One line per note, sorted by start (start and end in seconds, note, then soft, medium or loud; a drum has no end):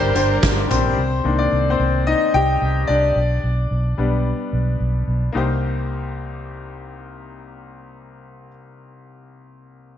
0.00 0.10 G1 medium
0.00 0.66 G2 medium
0.00 0.14 G3 loud
0.00 0.97 G3 medium
0.00 0.11 D4 loud
0.00 0.15 D4 loud
0.00 0.96 D4 medium
0.00 0.12 G4 medium
0.00 0.15 G4 loud
0.00 0.12 A#4 loud
0.00 0.14 A#4 medium
0.00 0.97 A#4 medium
0.00 0.38 C5 medium
0.15 0.37 G1 loud
0.15 0.86 D4 medium
0.15 0.41 D4 soft
0.15 0.87 G4 medium
0.15 0.42 G4 medium
0.15 0.42 A#4 medium
0.15 0.69 C5 loud
0.15 closed hi-hat medium
0.41 0.65 G1 loud
0.41 0.69 G3 medium
0.41 0.69 D4 medium
0.41 0.69 G4 medium
0.41 0.68 A#4 medium
0.41 kick loud
0.41 snare loud
0.41 closed hi-hat medium
0.69 0.92 A#1 loud
0.69 1.34 C4 medium
0.69 0.98 D4 soft
0.69 0.97 G4 medium
0.69 0.96 A#4 medium
0.69 1.34 C5 loud
0.69 closed hi-hat medium
0.69 floor tom medium
0.97 1.19 C2 medium
1.24 1.47 C2 medium
1.24 2.02 D#3 soft
1.24 2.02 A#3 soft
1.24 1.38 D4 medium
1.39 1.68 D4 medium
1.39 1.71 D5 medium
1.52 1.74 C2 medium
1.70 2.04 C4 medium
1.70 2.07 C5 medium
1.79 2.12 C2 medium
2.07 2.32 D#4 medium
2.07 2.34 D#5 medium
2.34 2.56 C2 medium
2.34 2.85 G4 medium
2.34 2.84 G5 loud
2.61 2.83 C2 medium
2.87 3.11 C2 medium
2.87 3.97 D4 medium
2.87 4.75 D5 medium
3.16 3.38 B1 medium
3.43 3.65 B1 medium
3.71 3.93 B1 medium
3.98 4.31 B1 medium
3.98 4.34 G3 soft
3.98 4.34 B3 soft
3.98 4.34 D4 soft
4.53 4.75 B1 medium
4.80 5.02 B1 medium
5.07 5.29 B1 medium
5.32 8.48 C2 medium
5.32 8.46 A#3 medium
5.32 8.48 D#4 medium
5.32 8.49 G4 medium
5.37 8.51 C5 medium